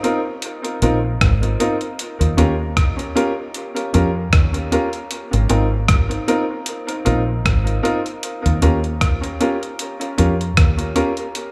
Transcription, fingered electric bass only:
0.82 1.16 A#1 medium
1.21 1.55 G#1 medium
2.21 2.36 D#2 medium
2.38 3.06 D#2 medium
3.95 4.28 F2 medium
4.33 4.67 D#2 medium
5.33 5.48 G#1 medium
5.50 6.18 G#1 medium
7.07 7.40 A#1 medium
7.46 7.79 G#1 medium
8.46 8.60 D#2 medium
8.63 9.31 D#2 medium
10.19 10.53 F2 medium
10.58 10.92 D#2 medium

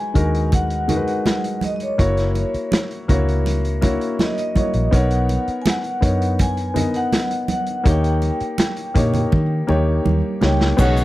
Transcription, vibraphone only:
0.00 0.49 G#5 loud
0.54 1.59 F#5 medium
1.64 1.75 D#5 medium
1.76 1.82 D#5 soft
1.83 2.88 C#5 medium
4.21 4.37 D#5 medium
4.39 4.95 D#5 medium
4.94 5.56 F#5 medium
5.62 5.67 G#5 medium
5.69 6.43 F#5 medium
6.41 6.97 G#5 medium
6.96 7.46 F#5 medium
7.52 7.85 F#5 medium
7.89 10.03 G5 medium
10.44 10.77 G5 medium
10.81 11.04 F#5 loud

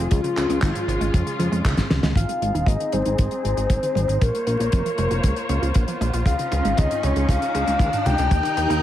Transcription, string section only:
0.11 2.14 G#3 medium
0.11 2.14 C#4 medium
0.11 2.14 F4 medium
2.16 4.19 C4 medium
2.16 4.19 D#4 medium
2.16 4.19 G#4 medium
4.21 6.24 A#3 medium
4.21 8.27 F4 medium
4.21 6.24 C5 medium
4.21 6.24 C#5 medium
6.26 8.29 C#4 medium
6.26 8.83 D#4 medium
8.32 8.83 D#3 medium
8.32 8.83 G4 medium
8.32 8.83 A#4 medium

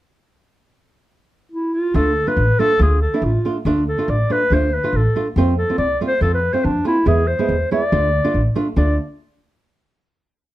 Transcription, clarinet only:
1.52 1.75 E4 medium
1.74 1.97 F4 medium
1.95 2.29 A4 medium
2.28 2.61 B4 medium
2.60 2.81 A4 loud
2.82 3.01 G#4 medium
3.02 3.25 A4 medium
3.24 3.56 F4 medium
3.88 4.11 A4 medium
4.10 4.33 D5 medium
4.32 4.55 B4 medium
4.54 4.76 C5 medium
4.74 4.98 B4 medium
4.96 5.27 A4 medium
5.58 5.78 A4 medium
5.78 5.99 D5 medium
6.08 6.21 C5 medium
6.22 6.32 A4 medium
6.34 6.55 B4 medium
6.53 6.66 C5 medium
6.65 6.86 D4 medium
6.87 7.09 E4 medium
7.07 7.29 G#4 medium
7.28 7.71 C5 medium
7.72 8.52 D5 medium
8.77 8.97 D5 medium

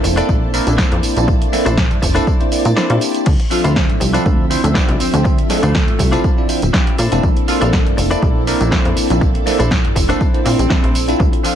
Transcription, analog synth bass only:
0.04 0.22 F1 loud
0.29 0.60 A#1 medium
0.67 0.83 A#1 medium
0.92 1.00 F2 loud
1.03 1.14 A#1 soft
1.17 1.47 A#1 loud
1.66 1.92 A#1 medium
1.91 1.99 G2 loud
2.03 2.20 F1 loud
2.65 2.73 A#2 medium
2.90 2.98 A#2 loud
3.27 3.36 D2 loud
3.65 3.91 D2 loud
3.89 3.97 A2 loud
4.01 4.18 C2 medium
4.26 4.57 D2 medium
4.64 4.80 D2 medium
4.89 4.96 C2 loud
5.00 5.11 D2 soft
5.13 5.44 D2 loud
5.63 5.89 D2 loud
5.88 5.96 A2 medium
5.99 6.17 C2 medium
6.63 6.70 D1 medium
6.99 7.08 A#2 medium
7.12 7.20 F1 medium
7.23 7.32 A#1 loud
7.62 7.88 A#1 loud
7.86 7.94 G2 medium
7.98 8.15 F1 medium
8.22 8.54 A#1 medium
8.61 8.77 A#1 medium
8.85 8.93 F2 loud
8.97 9.08 A#1 soft
9.10 9.41 A#1 loud
9.60 9.86 A#1 medium
9.85 9.92 G2 loud
9.96 10.13 F1 loud
10.46 10.55 A#2 loud
10.59 10.67 A#1 medium
10.84 11.14 A#1 medium
11.20 11.29 D2 loud

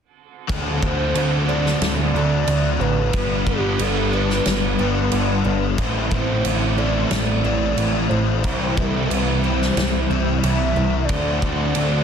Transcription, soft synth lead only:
0.82 1.49 C5 loud
1.48 1.81 D5 medium
1.82 2.82 D5 loud
2.80 3.47 B4 loud
3.48 3.83 G4 medium
3.82 4.15 A4 medium
4.14 5.46 B4 loud
6.13 6.79 C5 medium
6.78 7.10 D5 medium
8.09 8.77 C5 medium
8.75 9.10 A4 medium
9.08 9.43 B4 medium
9.42 10.06 C5 medium
10.07 10.40 C5 medium
10.39 11.06 E5 loud
11.05 12.04 D5 loud

